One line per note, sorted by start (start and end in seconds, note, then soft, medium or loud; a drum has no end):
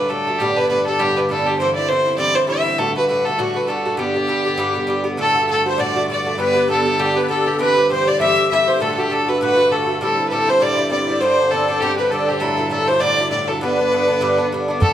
0.00 0.38 G2 medium
0.00 0.38 D3 medium
0.00 0.11 B4 medium
0.09 0.26 A2 soft
0.09 0.27 F#3 medium
0.09 0.27 A3 medium
0.09 0.26 D4 medium
0.09 0.40 A4 medium
0.27 0.40 F#3 soft
0.27 0.40 A3 soft
0.27 0.40 D4 medium
0.39 5.18 G2 medium
0.39 0.57 A2 medium
0.39 5.18 D3 medium
0.39 0.57 G3 medium
0.39 0.57 B3 medium
0.39 0.55 D4 medium
0.39 0.58 G4 medium
0.56 0.69 G3 soft
0.56 0.70 B3 soft
0.56 0.69 D4 medium
0.56 0.68 B4 loud
0.69 0.86 A2 soft
0.69 0.87 G3 medium
0.69 0.86 B3 medium
0.69 0.85 D4 medium
0.69 0.85 B4 medium
0.86 0.98 G3 soft
0.86 0.99 B3 soft
0.86 0.99 D4 soft
0.86 1.01 A4 medium
0.99 1.16 A2 medium
0.99 1.16 G3 medium
0.99 1.16 B3 medium
0.99 1.15 D4 medium
0.99 1.18 G4 medium
1.16 1.29 G3 soft
1.16 1.30 B3 soft
1.16 1.29 D4 medium
1.16 1.29 B4 medium
1.29 1.46 A2 medium
1.29 1.46 G3 medium
1.29 1.46 B3 medium
1.29 1.45 D4 medium
1.29 1.48 A4 medium
1.46 1.60 G3 soft
1.46 1.60 B3 soft
1.46 1.59 D4 soft
1.46 1.57 G4 medium
1.58 1.76 G2 medium
1.58 1.77 E3 medium
1.58 1.77 C4 medium
1.58 1.77 E4 medium
1.58 1.74 C5 medium
1.75 1.90 C4 soft
1.75 1.90 E4 soft
1.75 1.90 D5 medium
1.80 1.89 E3 soft
1.88 2.06 G2 soft
1.88 2.07 E3 soft
1.88 2.07 C4 medium
1.88 2.05 E4 medium
1.88 2.17 C5 medium
2.06 2.17 E3 soft
2.06 2.18 C4 soft
2.06 2.19 E4 medium
2.18 2.35 G2 medium
2.18 2.35 E3 medium
2.18 2.34 C4 medium
2.18 2.33 E4 medium
2.18 2.37 D5 loud
2.34 2.47 E3 soft
2.34 2.48 C4 medium
2.34 2.48 E4 soft
2.34 2.48 C5 medium
2.47 2.65 G2 medium
2.47 2.65 E3 medium
2.47 2.65 C4 medium
2.47 2.63 E4 medium
2.47 2.80 E5 medium
2.65 2.78 E3 soft
2.65 2.79 C4 soft
2.65 2.78 E4 medium
2.78 2.95 A2 medium
2.78 2.96 D3 medium
2.78 2.96 A3 medium
2.78 2.95 F#4 medium
2.78 2.96 A4 medium
2.96 3.08 D3 soft
2.96 3.09 A3 soft
2.96 3.09 F#4 soft
2.96 3.08 B4 medium
3.09 3.26 A2 medium
3.09 3.26 D3 medium
3.09 3.26 A3 soft
3.09 3.25 F#4 medium
3.09 3.26 B4 medium
3.25 3.38 A3 soft
3.25 3.39 F#4 medium
3.25 3.40 A4 medium
3.29 3.38 D3 soft
3.38 3.56 A2 medium
3.38 3.56 D3 medium
3.38 3.54 A3 medium
3.38 3.58 F#4 medium
3.38 3.53 F#4 medium
3.54 3.67 D3 soft
3.54 3.68 A3 soft
3.54 3.68 F#4 medium
3.54 3.69 B4 medium
3.67 3.85 A2 medium
3.67 3.85 D3 medium
3.67 3.85 A3 medium
3.67 3.84 F#4 medium
3.67 3.98 A4 medium
3.85 3.96 D3 soft
3.85 3.98 A3 soft
3.85 3.98 F#4 medium
3.97 4.15 G2 medium
3.97 4.15 D3 medium
3.97 4.15 B3 medium
3.97 5.01 G4 medium
3.97 4.13 G4 medium
4.14 4.27 D3 soft
4.14 4.28 B3 soft
4.14 4.28 G4 soft
4.27 4.45 G2 medium
4.27 4.45 D3 medium
4.27 4.46 B3 medium
4.27 4.44 G4 medium
4.45 4.56 D3 soft
4.45 4.58 B3 medium
4.45 4.58 G4 medium
4.58 4.75 G2 medium
4.58 4.75 D3 medium
4.58 4.74 B3 medium
4.58 4.73 G4 medium
4.74 4.86 D3 soft
4.74 4.87 B3 soft
4.74 4.88 G4 medium
4.87 5.05 G2 medium
4.87 5.05 D3 medium
4.87 5.04 B3 medium
4.87 5.03 G4 medium
5.04 5.17 D3 soft
5.04 5.18 B3 medium
5.04 5.18 G4 medium
5.17 10.00 G2 medium
5.17 5.35 A2 medium
5.17 5.35 D3 medium
5.17 10.00 D3 medium
5.17 5.36 A3 medium
5.17 5.33 F#4 medium
5.17 5.47 A4 medium
5.17 5.48 A4 loud
5.35 5.48 D3 soft
5.35 5.49 A3 soft
5.35 5.48 F#4 soft
5.48 5.65 A2 soft
5.48 5.66 D3 medium
5.48 5.65 A3 medium
5.48 5.64 F#4 medium
5.48 5.64 A4 medium
5.48 5.65 A4 medium
5.66 5.78 D3 soft
5.66 5.78 A3 soft
5.66 5.79 F#4 medium
5.66 5.79 C5 medium
5.66 5.81 C5 medium
5.78 5.95 A2 medium
5.78 5.96 D3 medium
5.78 5.96 A3 medium
5.78 5.95 F#4 medium
5.78 6.06 D5 medium
5.78 6.09 D5 medium
5.96 6.08 D3 soft
5.96 6.09 A3 soft
5.96 6.09 F#4 medium
6.08 6.25 A2 medium
6.08 6.26 D3 medium
6.08 6.25 A3 medium
6.08 6.24 F#4 medium
6.08 6.36 D5 medium
6.08 6.38 D5 medium
6.25 6.37 D3 soft
6.25 6.38 A3 soft
6.25 6.38 F#4 soft
6.38 6.55 G2 medium
6.38 6.56 D3 medium
6.38 6.55 B3 medium
6.38 6.53 G4 medium
6.38 6.54 B4 medium
6.38 6.68 B4 loud
6.54 6.67 D3 soft
6.54 6.68 B3 soft
6.54 6.68 G4 soft
6.54 6.68 B4 medium
6.68 6.85 G2 medium
6.68 6.85 D3 medium
6.68 6.85 B3 medium
6.68 6.84 G4 medium
6.68 7.01 A4 medium
6.68 6.98 A4 medium
6.85 6.98 D3 soft
6.85 6.98 B3 medium
6.85 6.98 G4 soft
6.98 7.15 G2 medium
6.98 7.16 D3 medium
6.98 7.15 B3 medium
6.98 7.16 G4 medium
6.98 7.13 G4 medium
6.98 7.18 G4 medium
7.15 7.28 D3 soft
7.15 7.28 B3 soft
7.15 7.28 G4 medium
7.15 7.29 B4 medium
7.28 7.46 G2 medium
7.28 7.46 D3 medium
7.28 7.46 B3 medium
7.28 7.45 G4 medium
7.28 7.60 A4 medium
7.28 7.48 A4 medium
7.46 7.59 D3 soft
7.46 7.59 B3 soft
7.46 7.59 G4 soft
7.46 7.59 G4 medium
7.59 7.76 G2 medium
7.59 7.76 E3 medium
7.59 7.76 C4 medium
7.59 7.76 G4 medium
7.59 7.87 B4 medium
7.59 7.88 B4 loud
7.77 7.89 E3 soft
7.77 7.90 C4 soft
7.77 7.90 G4 medium
7.89 8.06 G2 soft
7.89 8.07 E3 medium
7.89 8.07 C4 medium
7.89 8.06 G4 medium
7.89 8.08 C5 medium
7.89 8.09 C5 medium
8.07 8.20 E3 soft
8.07 8.20 C4 medium
8.07 8.20 G4 medium
8.07 8.20 D5 medium
8.20 8.37 G2 medium
8.20 8.37 E3 medium
8.20 8.37 C4 medium
8.20 8.35 G4 medium
8.20 8.48 E5 medium
8.20 8.48 E5 loud
8.36 8.51 E3 soft
8.36 8.50 C4 soft
8.36 8.49 G4 soft
8.49 8.67 G2 medium
8.49 8.68 E3 medium
8.49 8.67 C4 medium
8.49 8.67 G4 medium
8.49 8.67 E5 medium
8.49 8.69 E5 medium
8.68 8.81 E3 soft
8.68 8.81 C4 soft
8.68 8.80 G4 medium
8.68 8.81 C5 medium
8.68 8.83 C5 medium
8.80 8.97 A2 medium
8.80 8.98 D3 medium
8.80 8.98 A3 medium
8.80 8.97 F#4 medium
8.80 8.93 A4 medium
8.80 9.09 A4 medium
8.94 9.10 F#4 soft
8.94 9.00 A4 medium
8.99 9.10 D3 soft
8.99 9.11 A3 soft
8.99 9.13 G4 medium
9.10 9.27 A2 medium
9.10 9.27 D3 medium
9.10 9.27 A3 medium
9.10 9.27 F#4 medium
9.10 9.41 A4 medium
9.10 9.30 A4 medium
9.28 9.41 D3 soft
9.28 9.41 A3 soft
9.28 9.40 F#4 medium
9.28 9.41 B4 medium
9.41 9.57 A2 medium
9.41 9.58 D3 medium
9.41 9.57 A3 medium
9.41 9.56 F#4 medium
9.41 9.68 B4 medium
9.41 9.73 B4 loud
9.57 9.69 D3 soft
9.57 9.70 A3 soft
9.57 9.70 F#4 soft
9.69 9.87 A2 soft
9.69 9.87 D3 medium
9.69 9.87 A3 soft
9.69 9.85 F#4 medium
9.69 9.99 A4 medium
9.69 10.01 A4 medium
9.87 10.01 D3 soft
9.87 10.01 A3 soft
9.87 10.00 F#4 soft
10.00 14.80 G2 medium
10.00 10.18 A2 medium
10.00 14.81 D3 medium
10.00 10.18 G3 medium
10.00 10.18 C4 medium
10.00 10.16 E4 medium
10.00 10.28 A4 medium
10.00 10.26 A4 medium
10.18 10.31 G3 soft
10.18 10.31 C4 soft
10.18 10.30 E4 soft
10.28 10.48 A2 medium
10.28 10.48 G3 medium
10.28 10.48 A4 medium
10.28 10.51 A4 loud
10.28 10.33 B4 medium
10.33 10.48 C4 medium
10.33 10.46 E4 medium
10.47 10.60 G3 soft
10.47 10.60 C4 soft
10.47 10.60 E4 medium
10.47 10.61 C5 medium
10.47 10.64 C5 medium
10.60 10.77 A2 medium
10.60 10.77 G3 medium
10.60 10.76 C4 medium
10.60 10.75 E4 medium
10.60 10.70 D5 medium
10.60 10.91 D5 loud
10.73 10.90 E4 medium
10.73 10.81 D5 medium
10.77 10.89 G3 soft
10.77 10.90 C4 soft
10.83 10.90 D5 medium
10.90 11.07 A2 medium
10.90 11.07 G3 medium
10.90 11.07 C4 medium
10.90 11.06 E4 medium
10.90 11.22 D5 medium
10.90 11.06 D5 medium
11.07 11.22 G3 soft
11.07 11.21 C4 soft
11.07 11.20 E4 medium
11.07 11.20 D5 medium
11.21 11.38 G2 medium
11.21 11.38 D3 medium
11.21 11.38 C4 medium
11.21 11.39 D4 medium
11.21 11.52 C5 loud
11.21 11.52 C5 medium
11.40 11.51 D3 soft
11.40 11.51 C4 soft
11.40 11.52 D4 soft
11.51 11.68 G2 soft
11.51 11.68 D3 medium
11.51 11.69 C4 medium
11.51 11.67 D4 medium
11.51 11.82 A4 medium
11.68 11.81 D3 soft
11.68 11.82 C4 soft
11.68 11.81 D4 medium
11.80 11.98 G2 medium
11.80 11.98 D3 medium
11.80 11.98 C4 medium
11.80 11.97 D4 medium
11.80 11.97 G4 medium
11.80 11.96 G4 medium
11.97 12.11 D3 soft
11.97 12.12 C4 medium
11.97 12.11 D4 medium
11.97 12.11 B4 medium
11.97 12.12 B4 medium
12.10 12.28 G2 medium
12.10 12.28 D3 medium
12.10 12.29 C4 medium
12.10 12.28 A4 medium
12.10 12.30 A4 medium
12.14 12.27 D4 medium
12.27 12.40 D3 soft
12.27 12.40 C4 soft
12.27 12.40 D4 soft
12.27 12.39 G4 medium
12.27 12.42 G4 medium
12.40 12.57 A2 medium
12.40 12.58 F#3 medium
12.40 12.57 D4 medium
12.40 12.56 E4 medium
12.40 12.69 A4 medium
12.40 12.70 A4 medium
12.57 12.69 F#3 soft
12.57 12.70 D4 soft
12.57 12.70 E4 medium
12.69 12.87 A2 medium
12.69 12.88 F#3 medium
12.69 12.87 D4 medium
12.69 12.86 E4 medium
12.69 12.88 A4 medium
12.69 12.89 A4 medium
12.87 12.99 F#3 soft
12.87 13.00 D4 soft
12.87 13.01 E4 medium
12.87 13.01 C5 medium
12.87 13.02 C5 medium
13.00 13.18 A2 medium
13.00 13.18 F#3 medium
13.00 13.18 D4 medium
13.00 13.17 E4 medium
13.00 13.30 D5 loud
13.00 13.29 D5 medium
13.19 13.30 F#3 soft
13.19 13.31 D4 medium
13.19 13.31 E4 medium
13.31 13.48 A2 medium
13.31 13.48 F#3 medium
13.31 13.48 D4 medium
13.31 13.46 E4 medium
13.31 13.48 D5 medium
13.31 13.49 D5 medium
13.48 13.61 F#3 soft
13.48 13.62 D4 soft
13.48 13.61 E4 medium
13.48 13.61 A4 medium
13.48 13.62 A4 medium
13.61 13.78 G2 medium
13.61 13.78 D3 medium
13.61 13.79 B3 medium
13.61 13.78 D4 medium
13.61 14.47 B4 medium
13.61 14.47 B4 loud
13.79 13.92 D3 soft
13.79 13.92 B3 soft
13.79 13.92 D4 medium
13.92 14.09 G2 medium
13.92 14.09 D3 medium
13.92 14.07 B3 soft
13.92 14.06 D4 medium
14.07 14.20 D3 soft
14.07 14.21 B3 medium
14.07 14.21 D4 medium
14.21 14.38 G2 medium
14.21 14.38 D3 medium
14.21 14.38 B3 medium
14.21 14.37 D4 medium
14.38 14.51 D3 soft
14.38 14.52 B3 soft
14.38 14.51 D4 medium
14.52 14.69 G2 medium
14.52 14.69 D3 medium
14.52 14.69 B3 medium
14.52 14.67 D4 medium
14.68 14.80 D3 soft
14.68 14.81 B3 medium
14.68 14.81 D4 medium
14.80 14.93 G2 medium
14.80 14.93 A2 medium
14.80 14.93 D3 medium
14.80 14.93 A3 medium
14.80 14.93 F#4 medium
14.80 14.93 A4 medium
14.80 bodhran medium